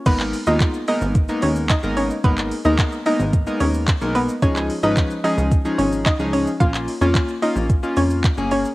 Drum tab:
CC |x---------------|----------------|----------------|----------------|
HH |x-o-x-o-x-o-x-o-|x-o-x-o-x-o-x-o-|x-o-x-o-x-o-x-o-|x-o-x-o-x-o-x-o-|
SH |xxxxxxxxxxxxxxxx|xxxxxxxxxxxxxxxx|xxxxxxxxxxxxxxxx|xxxxxxxxxxxxxxxx|
CP |-x--x-------x---|-x--x-------x---|-x--x-------x---|-x--x-------x---|
BD |o---o---o---o---|o---o---o---o---|o---o---o---o---|o---o---o---o---|